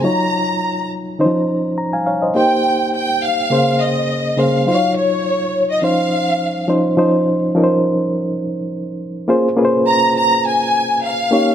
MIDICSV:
0, 0, Header, 1, 3, 480
1, 0, Start_track
1, 0, Key_signature, -5, "minor"
1, 0, Tempo, 578592
1, 32, Time_signature, 4, 2, 24, 8
1, 9580, End_track
2, 0, Start_track
2, 0, Title_t, "Violin section"
2, 0, Program_c, 0, 48
2, 36, Note_on_c, 0, 82, 83
2, 721, Note_off_c, 0, 82, 0
2, 1970, Note_on_c, 0, 79, 93
2, 2408, Note_off_c, 0, 79, 0
2, 2449, Note_on_c, 0, 79, 100
2, 2665, Note_off_c, 0, 79, 0
2, 2693, Note_on_c, 0, 77, 96
2, 3163, Note_off_c, 0, 77, 0
2, 3171, Note_on_c, 0, 75, 85
2, 3642, Note_off_c, 0, 75, 0
2, 3649, Note_on_c, 0, 77, 78
2, 3879, Note_off_c, 0, 77, 0
2, 3889, Note_on_c, 0, 77, 85
2, 4105, Note_off_c, 0, 77, 0
2, 4126, Note_on_c, 0, 73, 90
2, 4696, Note_off_c, 0, 73, 0
2, 4735, Note_on_c, 0, 75, 83
2, 4832, Note_off_c, 0, 75, 0
2, 4850, Note_on_c, 0, 77, 81
2, 5528, Note_off_c, 0, 77, 0
2, 8207, Note_on_c, 0, 82, 103
2, 8422, Note_off_c, 0, 82, 0
2, 8448, Note_on_c, 0, 82, 104
2, 8662, Note_off_c, 0, 82, 0
2, 8692, Note_on_c, 0, 80, 102
2, 9127, Note_off_c, 0, 80, 0
2, 9172, Note_on_c, 0, 77, 94
2, 9580, Note_off_c, 0, 77, 0
2, 9580, End_track
3, 0, Start_track
3, 0, Title_t, "Reed electric piano"
3, 0, Program_c, 1, 4
3, 0, Control_c, 1, 64, 127
3, 25, Note_on_c, 1, 54, 68
3, 31, Note_on_c, 1, 63, 59
3, 35, Note_on_c, 1, 65, 63
3, 40, Note_on_c, 1, 73, 70
3, 43, Control_c, 1, 64, 0
3, 208, Control_c, 1, 64, 127
3, 624, Note_off_c, 1, 54, 0
3, 627, Note_off_c, 1, 63, 0
3, 629, Note_off_c, 1, 65, 0
3, 631, Note_off_c, 1, 73, 0
3, 986, Note_on_c, 1, 51, 72
3, 992, Note_on_c, 1, 61, 77
3, 998, Note_on_c, 1, 63, 78
3, 1001, Control_c, 1, 64, 0
3, 1003, Note_on_c, 1, 72, 90
3, 1040, Note_on_c, 1, 53, 81
3, 1048, Note_off_c, 1, 51, 0
3, 1133, Control_c, 1, 64, 127
3, 1475, Note_on_c, 1, 82, 57
3, 1478, Note_off_c, 1, 72, 0
3, 1576, Note_off_c, 1, 61, 0
3, 1579, Note_off_c, 1, 63, 0
3, 1597, Note_off_c, 1, 82, 0
3, 1600, Note_off_c, 1, 53, 0
3, 1603, Note_on_c, 1, 80, 67
3, 1607, Note_on_c, 1, 77, 56
3, 1703, Note_off_c, 1, 77, 0
3, 1707, Note_off_c, 1, 80, 0
3, 1713, Note_on_c, 1, 77, 60
3, 1718, Note_on_c, 1, 73, 52
3, 1836, Note_off_c, 1, 77, 0
3, 1839, Note_off_c, 1, 73, 0
3, 1842, Note_on_c, 1, 75, 58
3, 1848, Note_on_c, 1, 72, 49
3, 1947, Note_on_c, 1, 58, 67
3, 1950, Note_on_c, 1, 63, 62
3, 1952, Note_off_c, 1, 72, 0
3, 1955, Note_on_c, 1, 67, 64
3, 1962, Note_on_c, 1, 72, 72
3, 1964, Control_c, 1, 64, 0
3, 2070, Note_off_c, 1, 75, 0
3, 2116, Control_c, 1, 64, 127
3, 2545, Note_off_c, 1, 58, 0
3, 2547, Note_off_c, 1, 63, 0
3, 2549, Note_off_c, 1, 67, 0
3, 2553, Note_off_c, 1, 72, 0
3, 2904, Note_on_c, 1, 49, 73
3, 2909, Note_on_c, 1, 58, 68
3, 2912, Note_on_c, 1, 61, 65
3, 2917, Note_on_c, 1, 68, 63
3, 2922, Note_on_c, 1, 72, 81
3, 2923, Control_c, 1, 64, 0
3, 3065, Control_c, 1, 64, 127
3, 3492, Note_off_c, 1, 49, 0
3, 3495, Note_off_c, 1, 58, 0
3, 3496, Note_off_c, 1, 61, 0
3, 3499, Note_off_c, 1, 68, 0
3, 3502, Note_off_c, 1, 72, 0
3, 3623, Note_on_c, 1, 49, 65
3, 3628, Note_on_c, 1, 58, 60
3, 3631, Note_on_c, 1, 61, 60
3, 3636, Note_on_c, 1, 68, 61
3, 3640, Note_on_c, 1, 72, 72
3, 3782, Note_off_c, 1, 49, 0
3, 3785, Note_off_c, 1, 58, 0
3, 3787, Note_off_c, 1, 61, 0
3, 3789, Note_off_c, 1, 68, 0
3, 3791, Note_off_c, 1, 72, 0
3, 3866, Note_on_c, 1, 54, 66
3, 3872, Note_on_c, 1, 63, 60
3, 3877, Note_on_c, 1, 65, 64
3, 3883, Control_c, 1, 64, 0
3, 3885, Note_on_c, 1, 72, 59
3, 3936, Note_on_c, 1, 73, 77
3, 3937, Note_off_c, 1, 72, 0
3, 4040, Control_c, 1, 64, 127
3, 4465, Note_off_c, 1, 54, 0
3, 4468, Note_off_c, 1, 63, 0
3, 4470, Note_off_c, 1, 65, 0
3, 4500, Note_off_c, 1, 73, 0
3, 4828, Note_on_c, 1, 53, 71
3, 4832, Note_on_c, 1, 61, 69
3, 4837, Note_on_c, 1, 63, 64
3, 4843, Control_c, 1, 64, 0
3, 4844, Note_on_c, 1, 72, 78
3, 4989, Control_c, 1, 64, 127
3, 5414, Note_off_c, 1, 53, 0
3, 5416, Note_off_c, 1, 61, 0
3, 5419, Note_off_c, 1, 63, 0
3, 5423, Note_off_c, 1, 72, 0
3, 5539, Note_on_c, 1, 53, 75
3, 5543, Note_on_c, 1, 61, 70
3, 5551, Note_on_c, 1, 63, 74
3, 5554, Note_on_c, 1, 72, 81
3, 5700, Note_off_c, 1, 53, 0
3, 5702, Note_off_c, 1, 61, 0
3, 5706, Note_off_c, 1, 63, 0
3, 5708, Note_off_c, 1, 72, 0
3, 5781, Note_on_c, 1, 53, 78
3, 5787, Note_on_c, 1, 61, 68
3, 5792, Note_on_c, 1, 63, 74
3, 5797, Note_on_c, 1, 72, 86
3, 5805, Control_c, 1, 64, 0
3, 5944, Control_c, 1, 64, 127
3, 6084, Note_off_c, 1, 53, 0
3, 6088, Note_off_c, 1, 61, 0
3, 6090, Note_off_c, 1, 63, 0
3, 6093, Note_off_c, 1, 72, 0
3, 6264, Note_on_c, 1, 53, 82
3, 6269, Note_on_c, 1, 61, 76
3, 6274, Note_on_c, 1, 63, 73
3, 6278, Note_on_c, 1, 70, 70
3, 6334, Note_off_c, 1, 70, 0
3, 6335, Note_on_c, 1, 72, 86
3, 6863, Note_off_c, 1, 53, 0
3, 6866, Note_off_c, 1, 61, 0
3, 6868, Note_off_c, 1, 63, 0
3, 6899, Note_off_c, 1, 72, 0
3, 7697, Note_on_c, 1, 58, 83
3, 7702, Note_on_c, 1, 61, 74
3, 7705, Note_on_c, 1, 65, 82
3, 7709, Note_on_c, 1, 68, 78
3, 7713, Note_on_c, 1, 72, 94
3, 7720, Control_c, 1, 64, 0
3, 7858, Note_off_c, 1, 58, 0
3, 7860, Note_off_c, 1, 61, 0
3, 7862, Note_off_c, 1, 65, 0
3, 7864, Note_off_c, 1, 68, 0
3, 7866, Note_off_c, 1, 72, 0
3, 7882, Control_c, 1, 64, 127
3, 7935, Note_on_c, 1, 58, 84
3, 7939, Note_on_c, 1, 61, 76
3, 7942, Note_on_c, 1, 65, 72
3, 7947, Note_on_c, 1, 68, 80
3, 7953, Note_on_c, 1, 71, 75
3, 8004, Note_on_c, 1, 72, 93
3, 8010, Note_off_c, 1, 71, 0
3, 8537, Note_off_c, 1, 58, 0
3, 8539, Note_off_c, 1, 61, 0
3, 8540, Note_off_c, 1, 65, 0
3, 8543, Note_off_c, 1, 68, 0
3, 8572, Note_off_c, 1, 72, 0
3, 9382, Note_on_c, 1, 58, 74
3, 9386, Note_on_c, 1, 61, 63
3, 9389, Note_on_c, 1, 63, 63
3, 9393, Note_on_c, 1, 67, 66
3, 9398, Control_c, 1, 64, 0
3, 9398, Note_on_c, 1, 73, 83
3, 9558, Control_c, 1, 64, 127
3, 9580, Note_off_c, 1, 58, 0
3, 9580, Note_off_c, 1, 61, 0
3, 9580, Note_off_c, 1, 63, 0
3, 9580, Note_off_c, 1, 67, 0
3, 9580, Note_off_c, 1, 73, 0
3, 9580, End_track
0, 0, End_of_file